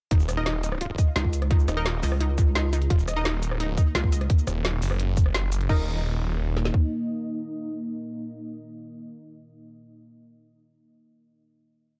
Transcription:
0.11 detuned saw bass D#1, synth arpeggio sound D#4, kick, closed hi-hat
0.20 cabasa
0.29 cross-stick, closed hi-hat, cabasa
0.37 synth stab D#4 A#4 D#5
0.46 synth arpeggio sound D#4, snare, closed hi-hat
0.63 synth arpeggio sound D#4, closed hi-hat, cabasa
0.72 cross-stick
0.81 synth arpeggio sound F4, closed hi-hat
0.98 synth arpeggio sound D#5, kick, closed hi-hat, cabasa
1.16 wobble bass C#2, synth arpeggio sound D#4, snare, closed hi-hat
1.25 kick
1.33 closed hi-hat, cabasa
1.42 cross-stick, closed hi-hat
1.51 synth arpeggio sound D#4, kick, closed hi-hat
1.59 cabasa
1.68 detuned saw bass D#1, synth arpeggio sound D#4, cross-stick, closed hi-hat, cabasa
1.77 synth stab D#4 A#4 D#5
1.85 synth arpeggio sound F4, snare, closed hi-hat
2.03 wobble bass C#2, synth arpeggio sound D#5, open hi-hat, cabasa
2.12 cross-stick
2.20 synth arpeggio sound D#4, closed hi-hat
2.38 kick, closed hi-hat, cabasa
2.55 synth arpeggio sound D#4, snare, closed hi-hat
2.73 synth arpeggio sound D#4, closed hi-hat, cabasa
2.82 closed hi-hat
2.90 detuned saw bass D#1, ambient pad D#3 A#3 A#4, synth arpeggio sound F4, kick, closed hi-hat
2.99 cabasa
3.08 synth arpeggio sound D#5, cross-stick, closed hi-hat, cabasa
3.16 synth stab D#4 A#4 D#5
3.25 synth arpeggio sound D#4, snare, closed hi-hat
3.43 closed hi-hat, cabasa
3.51 detuned saw bass D1, cross-stick
3.60 synth arpeggio sound D#4, closed hi-hat
3.77 synth arpeggio sound D#4, kick, closed hi-hat, cabasa
3.95 wobble bass C#2, synth arpeggio sound F4, snare, closed hi-hat
4.04 kick
4.12 synth arpeggio sound D#5, closed hi-hat, cabasa
4.21 cross-stick, closed hi-hat
4.30 kick, closed hi-hat
4.39 cabasa
4.47 detuned saw bass D#1, cross-stick, closed hi-hat, cabasa
4.65 snare, closed hi-hat
4.82 detuned saw bass F#1, open hi-hat, cabasa
4.91 cross-stick
5.00 closed hi-hat
5.17 kick, closed hi-hat, cabasa
5.26 cross-stick
5.34 detuned saw bass F#1, snare, closed hi-hat
5.52 closed hi-hat, cabasa
5.61 closed hi-hat
5.69 detuned saw bass D#1, ambient pad A#3 D#4 D#5, synth stab D#4 A#4 D#5, synth arpeggio sound D#4, kick, crash
6.57 snare
6.65 snare
6.74 kick

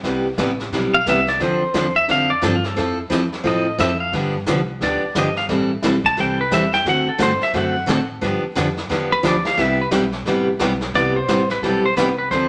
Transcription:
0.03 upright bass C2, steel-string acoustic guitar C3 G3 B3 E4 G4, brush sweep, kick, snare
0.38 upright bass A1, steel-string acoustic guitar C3 G3 B3 E4 G4, kick, snare, hi-hat pedal
0.60 snare
0.72 upright bass B1, steel-string acoustic guitar C3 G3 B3 E4 G4, brush sweep, kick, snare
0.94 pedal steel guitar F5
1.06 upright bass C2, steel-string acoustic guitar C3 G3 B3 E4 G4, pedal steel guitar E5, kick, snare, hi-hat pedal
1.27 pedal steel guitar D5, snare
1.39 upright bass D2, steel-string acoustic guitar D3 F3 C4 D4 A4, pedal steel guitar C5, brush sweep, kick, snare
1.62 muted upright bass stroke
1.74 upright bass E2, steel-string acoustic guitar D3 F3 C4 D4 A4, kick, snare, hi-hat pedal
1.96 pedal steel guitar E5
2.08 upright bass F2, steel-string acoustic guitar D3 F3 C4 D4 A4, pedal steel guitar F5, brush sweep, kick, snare
2.30 pedal steel guitar D5
2.42 upright bass G2, steel-string acoustic guitar D3 F3 C4 D4 A4, pedal steel guitar A4, kick, snare, hi-hat pedal
2.56 pedal steel guitar F4
2.64 pedal steel guitar A4, snare
2.76 upright bass F2, steel-string acoustic guitar F3 C4 E4 A4, brush sweep, kick, snare
3.10 upright bass E2, steel-string acoustic guitar F3 C4 E4 A4, kick, snare, hi-hat pedal
3.32 snare
3.44 upright bass A2, steel-string acoustic guitar F3 C4 E4 A4, pedal steel guitar D#5, brush sweep, kick, snare
3.78 upright bass F2, steel-string acoustic guitar F3 C4 E4 A4, pedal steel guitar E5, kick, snare, hi-hat pedal
4.00 pedal steel guitar F5
4.13 upright bass G2, steel-string acoustic guitar D3 F3 B3 D4 G4, brush sweep, kick, snare
4.46 upright bass C2, steel-string acoustic guitar D3 F3 B3 D4 G4, kick, snare, hi-hat pedal
4.81 upright bass D2, steel-string acoustic guitar D3 F3 B3 D4 G4, pedal steel guitar D5, brush sweep, kick, snare
5.02 muted upright bass stroke
5.15 upright bass G1, steel-string acoustic guitar D3 F3 B3 D4 G4, pedal steel guitar D#5, kick, snare, hi-hat pedal
5.36 pedal steel guitar F5, snare
5.49 upright bass A1, steel-string acoustic guitar E3 G3 C4 E4 A4, brush sweep, kick, snare
5.82 upright bass B1, steel-string acoustic guitar E3 G3 C4 E4 A4, kick, snare, hi-hat pedal
6.04 pedal steel guitar A5, kick, snare
6.17 upright bass C2, steel-string acoustic guitar E3 G3 C4 E4 A4, pedal steel guitar G5, brush sweep, kick, snare
6.41 pedal steel guitar B4
6.51 upright bass E2, steel-string acoustic guitar E3 G3 C4 E4 A4, pedal steel guitar E5, kick, snare, hi-hat pedal
6.72 pedal steel guitar G5, snare
6.85 upright bass D2, steel-string acoustic guitar D3 A3 C4 F#4 A4, brush sweep, kick, snare
6.89 pedal steel guitar F#5
7.07 pedal steel guitar A4, muted upright bass stroke
7.18 upright bass G2, steel-string acoustic guitar D3 A3 C4 F#4 A4, kick, snare, hi-hat pedal
7.23 pedal steel guitar C5
7.41 pedal steel guitar E5, snare
7.53 upright bass F#2, steel-string acoustic guitar D3 A3 C4 F#4 A4, pedal steel guitar F#5, brush sweep, kick, snare
7.86 upright bass A2, steel-string acoustic guitar D3 A3 C4 F#4 A4, kick, snare, hi-hat pedal
8.21 upright bass G2, steel-string acoustic guitar D3 F3 B3 D4 G4, brush sweep, kick, snare
8.43 muted upright bass stroke
8.55 upright bass F2, steel-string acoustic guitar D3 F3 B3 D4 G4, kick, snare, hi-hat pedal
8.77 snare
8.89 upright bass E2, steel-string acoustic guitar D3 F3 B3 D4 G4, brush sweep, kick, snare
9.12 pedal steel guitar B4
9.23 upright bass D2, steel-string acoustic guitar D3 F3 B3 D4 G4, kick, snare, hi-hat pedal
9.28 pedal steel guitar D5
9.45 pedal steel guitar F5, snare
9.57 upright bass C2, steel-string acoustic guitar C3 G3 B3 E4 G4, pedal steel guitar E5, brush sweep, kick, snare
9.81 pedal steel guitar B4
9.91 upright bass B1, steel-string acoustic guitar C3 G3 B3 E4 G4, kick, snare, hi-hat pedal
10.12 snare
10.25 upright bass A1, steel-string acoustic guitar C3 G3 B3 E4 G4, brush sweep, kick, snare
10.59 upright bass B1, steel-string acoustic guitar C3 G3 B3 E4 G4, kick, snare, hi-hat pedal
10.81 snare
10.94 upright bass C2, steel-string acoustic guitar C3 G3 B3 E4 G4, pedal steel guitar D5, brush sweep, kick, snare
11.16 pedal steel guitar C5
11.28 upright bass A1, steel-string acoustic guitar C3 G3 B3 E4 G4, kick, snare, hi-hat pedal
11.49 pedal steel guitar B4, snare
11.62 upright bass B1, steel-string acoustic guitar C3 G3 B3 E4 G4, pedal steel guitar A4, brush sweep, kick, snare
11.86 pedal steel guitar C5
11.97 upright bass C2, steel-string acoustic guitar C3 G3 B3 E4 G4, pedal steel guitar B4, kick, snare, hi-hat pedal
12.18 pedal steel guitar B4
12.31 upright bass D2, steel-string acoustic guitar D3 F3 C4 D4 A4, pedal steel guitar C5, brush sweep, kick, snare

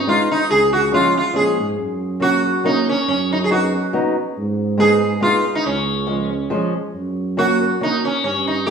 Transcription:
0.07 steel-string acoustic guitar G#3 B3 D#4, sitar F4
0.32 sitar D#4
0.50 tuba C#2, sitar G#4
0.73 sitar F#4
0.92 steel-string acoustic guitar F3 G#3 C#4, sitar F4
1.17 sitar F4
1.33 tuba A#2, steel-string acoustic guitar F3 G#3 C#4, sitar G#4
1.59 tuba G#2
1.79 tuba F#2
2.20 steel-string acoustic guitar F#3 A#3 C#4, sitar F#4
2.64 steel-string acoustic guitar F#3 A#3 C#4, sitar D#4
2.89 sitar C#4
3.08 tuba F#2, sitar C#4
3.33 sitar D#4
3.44 sitar G#4
3.50 steel-string acoustic guitar F#3 B3 D#4, sitar F#4
3.93 steel-string acoustic guitar F#3 B3 D#4
4.38 tuba G#2
4.78 steel-string acoustic guitar G#3 B3 D#4, sitar G#4
5.20 steel-string acoustic guitar G#3 B3 D#4, sitar F4
5.55 sitar D#4
5.66 tuba C#2, sitar C#4
6.07 steel-string acoustic guitar F3 G#3 C#4
6.50 steel-string acoustic guitar F3 G#3 C#4
6.95 tuba F#2
7.37 steel-string acoustic guitar F#3 A#3 C#4, sitar F#4
7.81 steel-string acoustic guitar F#3 A#3 C#4, sitar D#4
8.05 sitar C#4
8.24 tuba G2, sitar C#4
8.48 sitar D#4
8.66 steel-string acoustic guitar G3 A#3 D#4, sitar G4

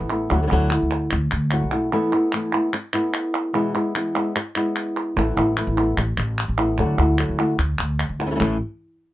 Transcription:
0.00 upright bass A1
0.10 nylon-string guitar A3 B3 E4
0.30 upright bass D2, nylon-string guitar D3 F#3 A3 E4 F#4
0.43 nylon-string guitar F#3 A3 E4 F#4
0.47 nylon-string guitar D3 F#3 A3 E4 F#4
0.52 upright bass D2, nylon-string guitar F#3 A3 E4 F#4
0.70 nylon-string guitar A3 E4 F#4, clap
0.82 upright bass D2
1.11 upright bass D2, muted nylon-string guitar stroke, clap
1.31 upright bass D2, clap
1.51 nylon-string guitar F#3 A3 E4 F#4, clap
1.63 upright bass B1
1.72 nylon-string guitar A3 E4 F#4
1.92 nylon-string guitar E3 A3 B3 E4
2.13 nylon-string guitar A3 B3 E4
2.32 nylon-string guitar E3 A3 B3 E4, clap
2.53 nylon-string guitar A3 B3 E4
2.73 muted nylon-string guitar stroke, clap
2.93 nylon-string guitar A3 B3 E4, clap
3.14 clap
3.53 nylon-string guitar B2 E3 G#3 B3 E4
3.74 nylon-string guitar G#3 B3 E4
3.95 nylon-string guitar E3 G#3 B3 E4, clap
4.16 nylon-string guitar G#3 B3 E4
4.36 muted nylon-string guitar stroke, clap
4.56 nylon-string guitar G#3 B3 E4, clap
4.76 clap
5.16 upright bass A1, nylon-string guitar E3 A3 B3 E4
5.37 upright bass A1, nylon-string guitar A3 B3 E4
5.57 nylon-string guitar E3 A3 B3 E4, clap
5.67 upright bass A1
5.77 nylon-string guitar A3 B3 E4
5.97 upright bass A1, muted nylon-string guitar stroke, clap
6.17 upright bass A1, clap
6.38 clap
6.48 upright bass A1
6.58 nylon-string guitar A3 B3 E4
6.79 upright bass D2, nylon-string guitar D3 F#3 A3 E4 F#4
6.98 upright bass D2, nylon-string guitar A3 E4 F#4
7.19 nylon-string guitar F#3 A3 E4 F#4, clap
7.29 upright bass D2
7.39 nylon-string guitar A3 E4 F#4
7.58 upright bass D2, muted nylon-string guitar stroke, clap
7.79 upright bass D2, clap
8.00 clap
8.09 upright bass D2
8.20 nylon-string guitar A3 E4 F#4
8.26 nylon-string guitar E3 A3 C#4 E4
8.31 nylon-string guitar E3 A3 C#4 E4
8.35 nylon-string guitar E3 A3 C#4 E4
8.40 upright bass A1, nylon-string guitar A2 E3 A3 C#4 E4, clap

